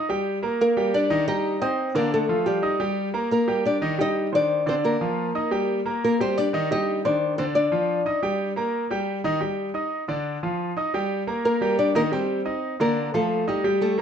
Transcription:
0.09 G3 G4 G5
0.43 A#3 A#4 A#5
0.61 A#3 A#4
0.77 G3 G4 G5
0.94 D4 D5
1.10 D#3 D#4 D#5
1.27 G3 D#4 G4 D#5 G5
1.61 C4 D#4 C5 D#5 D#6
1.95 D3 A#3 D4 A#4 D5
2.14 A3 A4
2.29 F3 F4 F5
2.46 G3 G4
2.63 D#4 D#5 D#6
2.80 G3 G4 G5
3.14 A#3 A#4 A#5
3.31 A#3 A#4
3.48 G3 G4 G5
3.66 D4 D5
3.82 D#3 D#4 D#5
3.98 G3 D#4 G4 D#5 G5
4.32 D#3 D4 C5 D5
4.66 D3 C4 D4 C5 D5
4.84 A#3 A#4
5.01 F3 F4 F5
5.35 D#4 D#5 D#6
5.51 G3 G4 G5
5.86 A#3 A#4 A#5
6.04 A#3 A#4
6.20 G3 C4 G4 C5 G5
6.38 D4 D5
6.53 D#3 D#4 D#5
6.71 G3 D#4 G4 D#5 G5
7.05 D#3 D4 C5 D5
7.38 D3 C4 D4 C5 D5
7.55 D4 D5
7.71 F3 F4 F5
8.06 D#4 D#5 D#6
8.22 G3 G4 G5
8.56 A#3 A#4 A#5
8.91 G3 G4 G5
9.24 D#3 D#4 D#5
9.41 G3 G4 G5
9.74 D#4 D#5 D#6
10.08 D3 D4 D5
10.43 F3 F4 F5
10.77 D#4 D#5 D#6
10.94 G3 G4 G5
11.27 A#3 A#4 A#5
11.45 A#3 A#4
11.61 G3 G4 G5
11.79 D4 D5
11.95 D#3 A#3 D#4 A#4 D#5
12.12 G3 C4 G4 C5 G5
12.45 D#4 D#5 D#6
12.80 D3 A#3 D4 A#4 D5
13.14 F3 A3 F4 A4 F5
13.47 G3 D#4 G4 D#5 D#6
13.64 G3 G4 G5
13.81 A3 A4
13.98 A#3 A#4

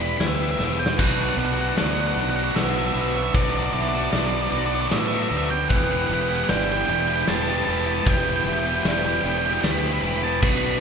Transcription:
Already playing: E1 E3 D5
0.01 B3 E4 G4 B5
0.09 B5
0.17 D2 B4 E5 B5, snare, ride
0.28 E5
0.35 E5
0.40 B3 E4 G4 E5
0.51 E5
0.59 E1 E3 B3 E4 G4 E5, snare
0.65 E5
0.73 E5
0.79 G5, muted distorted electric guitar stroke
0.86 snare
0.98 B1 B2 F#3 B3 D4 F#4 B4 F#5, kick, splash, crash
1.07 F#5
1.14 F#5
1.22 F#5
1.29 F#5
1.37 B1 F#3 B3 D4 F#4 F#5
1.45 F#5
1.54 F#4 F#5
1.58 B3 D4 F#5
1.69 F#5
1.76 D2 B2 F#3 B3 D4 F#4 D5 F#5, snare, ride
1.84 F#5
1.91 F#5
2.00 F#5
2.07 F#5
2.15 B1 F#3 B3 D4 F#4 F#5
2.21 F#5
2.29 F#5
2.35 B3 D4 F#4 F#5
2.44 F#5
2.51 F#5
2.56 B1 B4 E5, snare, ride
2.63 E5
2.71 F#4 E5
2.76 B3 D4 E5
2.86 E5
2.94 B1 F#3 B3 D4 B4 E5
2.98 F#4 E5
3.08 E5
3.14 B3 D4 F#4 E5, muted distorted electric guitar stroke
3.23 E5
3.34 B1 B2 F#3 B3 D4 F#4 D5, kick, ride
3.43 D5
3.50 D5
3.57 D5
3.66 D5
3.73 B1 F#3 B3 D4 F#4 D5 E5
3.82 D5
3.89 F#4 D5
3.94 B3 D4 D5
4.04 D5
4.12 B1 B2 F#3 B3 D4 F#4 D5, snare, ride
4.19 D5
4.27 D5
4.35 D5
4.42 D5
4.52 B1 F#3 B3 D4 F#4 D5
4.58 D5
4.66 D5
4.71 B3 D4 F#4 D5
4.81 D5
4.89 A2 B4 D5 E5, snare, ride
4.99 E5
5.07 F#4 E5
5.12 B3 D4 E5
5.23 E5
5.29 D2 F#3 B3 D4 F#4 E5
5.37 E5
5.45 E5
5.49 B3 D4 F#4 G5, muted distorted electric guitar stroke
5.69 E1 E3 B3 E4 G4 B4 F#5, kick, ride
5.77 F#5
5.84 F#5
5.92 F#5
5.99 F#5
6.07 E1 E3 B3 F#5
6.12 E4 G4 F#5
6.21 F#5
6.29 B3 E4 G4 F#5
6.36 F#5
6.44 F#5
6.48 G1 E3 B3 E4 G4 D5 G5, snare, ride
6.57 G5
6.64 G5
6.72 G5
6.77 G5
6.86 E1 E3 B3 E4 G5
6.91 G4 G5
7.00 G5
7.07 B3 E4 G4 G5
7.16 G5
7.23 G5
7.28 E1 B4 A5, snare, ride
7.36 A5
7.42 A5
7.47 B3 E4 G4 A5
7.58 A5
7.65 E1 E3 B3 E4 B4 A5
7.69 G4 A5
7.79 A5
7.86 B3 E4 G4 A5, muted distorted electric guitar stroke
7.95 A5
8.02 A5
8.06 E1 E3 B3 E4 G4 G5, kick, ride
8.13 G5
8.21 G5
8.29 G5
8.36 G5
8.44 E1 E3 B3 E4 E5 G5
8.49 G4
8.53 G5
8.59 G5
8.65 B3 E4 G4 G5
8.76 G5
8.83 E1 E3 B3 E4 G4 D5 G5, snare, ride
8.92 G5
8.99 G5
9.06 G5
9.13 G5
9.21 E1 E3 B3 G5
9.26 E4 G4
9.30 G5
9.38 G5
9.43 B3 E4 G4 G5
9.53 G5
9.61 D2 B4 G5 B5, snare, ride
9.71 B5
9.79 G4 B5
9.84 B3 E4 B5
9.94 B5
10.01 E1 E3 B3 E4 G4 B5
10.10 B5
10.17 B5
10.23 B3 E4 G4 A5, muted distorted electric guitar stroke
10.42 B1 B2 F#3 B3 D4 F#4 B4 B5, kick, crash
10.49 B5
10.57 B5
10.65 B5
10.71 B5

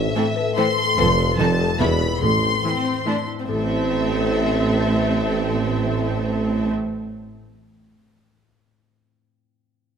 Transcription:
Already playing: A2 A3 A4 C5 E5
0.16 E3 A3 C4 E4 A4
0.36 A4 B4
0.57 E3 A3 C4 A4 C5 E5 C6
0.78 A4
0.97 F1 F2 F3 A3 C4 A4 B4
1.18 F4 A4
1.38 F1 F2 D#3 A3 D#4 A4 A5
1.59 D#4 A4
1.80 E1 E2 E3 B3 E4 G#4 B5
2.01 E4 E5
2.21 A1 A2 A4 C6
2.43 C4
2.64 E3 A3 C4 E4
2.85 C5
3.06 E3 A3 D4 E5
3.27 E4
3.39 C4
3.48 A1 A2 C4 A4 E5
3.55 A3
3.62 C4
3.69 E4
3.76 E5

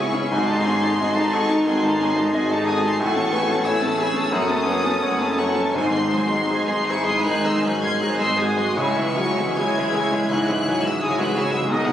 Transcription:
Already playing: C#2 G#2 C#3 G#3 B3 C#4 E4 G#4 C#5 G#5 C#6
0.13 C#4 G#4 E5
0.30 G#1 G#2 C4 D#4 F#4 G#4 G#5 C6
0.48 D#4 G#4 A4 A5
0.64 C4 C#4 F#4 G#4 G#5
0.82 D#4 G#4 A4 A5
0.96 G#1 G#2 C4 F#4 G#4 G#5
1.01 D#5
1.14 D#4 G#4 A4 A5
1.31 C4 F#4 G#4 A4 G#5 C#6
1.48 D#4 G#4 A4 A5
1.64 G#1 G#2 D#3 C4 F#4 G#4 G#5 C6
1.83 D#4 G#4 A4 A5
1.99 C4 C#4 F#4 G#4 G#5
2.16 D#4 G#4 A4 A5
2.33 G#1 G#2 C4 F#4 G#4 D#5 G#5
2.50 D#4 G#4 A4 A5 C#6
2.66 C4 F#4 G#4 A4 G#5 D#6
2.82 D#4 G#4 A4 A5 C6
2.99 A1 A2 A3 E4 F#4 G#4 G#5 C#6
3.16 C#4 G#4 A4 A5
3.33 A3 B3 E4 G#4 G#5
3.50 C#4 G#4 A4 A5
3.66 A1 A2 A3 E4 G#4 C#5 G#5 E6
3.82 C#4 G#4 A4 A5
3.98 A3 C#4 E4 G#4 G#5
4.14 C#4 G#4 A4 A5
4.32 F#1 F#2 A3 F#4 C#5 F#5 D#6
4.49 C#4 A4 A5
4.66 A3 B3 F#4 C#5 F#5
4.84 C#4 A4 A5
5.02 F#1 F#2 A3 F#4 C#5 F#5
5.20 C#4 A4 A5
5.38 A3 F#4 A4 C#5 F#5 C#6
5.56 C#4 A4 A5
5.74 G#1 G#2 C4 D#4 C5 G#5 C6
5.92 G#3 C4 G#4 C6
6.11 F#3 C4 D#4 C5 G#5
6.30 G#3 C4 G#4 C6
6.49 G#1 G#2 D#4 G#4 C5 G#5
6.68 G#3 G#4 C6
6.87 E4 G#4 C5 G#5 C#6
7.06 G#3 G#4 C6 D#6
7.26 G#1 G#2 D#3 D#4 C5 G#5 F#6
7.45 G#3 G#4 C6 E6
7.63 F#3 C#4 C5 G#5 F#6
7.82 G#3 G#4 C6 G#6
8.00 G#1 G#2 D#4 G#4 C5 G#5 F#6
8.19 G#3 G#4 C6 E6
8.37 F#4 G#4 C5 G#5 D#6
8.57 G#3 G#4 C6
8.75 C#2 C#3 G#3 E4 C#5 G#5 C#6
8.96 E3 G#3 C#4 G#4 E5
9.17 F#3 G#3 E4 F#4 C#5 G#5
9.38 E3 G#3 C#4 G#4 E5
9.56 C#2 C#3 G#3 E4 G#4 C#5 G#5 G#6
9.78 E3 G#3 C#4 G#4 E5
9.94 G#3 E4 G#4 C#5 G#5
10.12 E3 G#3 C#4 G#4 E5
10.30 C#2 G#2 C#3 G#3 E4 C#5 G#5 F#6
10.48 E3 G#3 C#4 G#4 E5
10.67 F#3 G#3 E4 C#5 G#5
10.84 E3 G#3 C#4 G#4 E5 E6
11.01 C#2 C#3 G#3 E4 F#4 G#4 C#5 G#5 D#6
11.18 E3 G#3 C#4 G#4 E5 F#6
11.33 G#3 E4 G#4 C#5 G#5
11.38 E6
11.51 E3 G#3 C#4 G#4 E5
11.68 B1 B2 D#3 D#4 F#4 G#4 D#5 D#6
11.84 F#3 D#4 F#4 B4 F#5

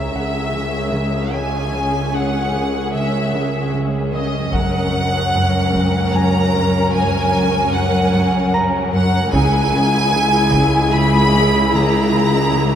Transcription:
Already playing: C#2 C#4 G#4 E5
0.13 C#3 F#5
0.53 C#3
0.93 C#3
1.33 C#3 G#5
1.73 C#3
2.13 C#3 F#5
2.53 C#3
2.93 C#3 E5
3.33 C#3
3.73 C#3
4.13 C#3 D#5
4.52 F#1 C#2 F#2 C#4 A#4 F#5, taiko
4.93 F#2
5.34 F#2
5.72 F#2, taiko
6.12 F#2 A#5
6.16 G#5
6.53 F#2
6.93 F#2 G#5
7.33 F#2
7.73 F#2 F#5
8.13 F#2
8.52 F#2 A#5
8.93 F#2 F#5
9.32 C#2 C#3 E4 G#4 G#5, taiko
9.74 C#3
10.14 C#3
10.53 C#3, taiko
10.93 C#3 B5
11.33 C#3
11.74 C#3 A#5
12.14 C#3
12.54 C#3

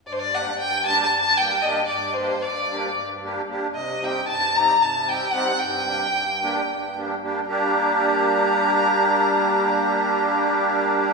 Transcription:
0.06 G2 D5
0.13 C5
0.19 D5
0.33 G3 A#3 D4 G4 F#5
0.59 G2 G5
0.86 G3 A#3 D4 G4 A5
1.04 A5
1.13 G2
1.19 A5
1.38 G3 A#3 D4 G4 G5
1.61 G3 A#3 D4 G4 D#5
1.86 G2 D5
2.14 G3 A#3 C5
2.18 D4 G4
2.42 G2 D5
2.72 G3 A#3 D4 G4
2.97 G2
3.22 G3 A#3 D4 G4
3.49 G3 A#3 D4 G4
3.74 C3 D#5
4.01 G3 C4 D#4 G4 G5
4.27 G2 A5
4.56 G3 C4 D#4 G4 A#5
4.82 C3 A5
5.08 G3 C4 D#4 G4 G5
5.32 G3 C4 D#4 G4 F#5
5.59 G2 G5
5.86 G3 A#3 D4 G4
6.13 G2
6.42 G3 A#3 D4 G4
6.69 G2
6.96 G3 A#3 D4 G4
7.22 G3 A#3 D4 G4
7.48 G3 A#3 D4 G4 A#5

